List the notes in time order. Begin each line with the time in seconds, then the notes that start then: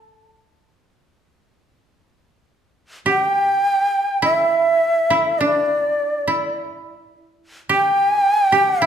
Already playing: A4
3.06 G4 F#5
3.21 G5
4.22 E4 E5
5.10 E4
5.38 D4 D5
6.27 E4
7.69 G4 G5
8.52 G4
8.81 E4 E5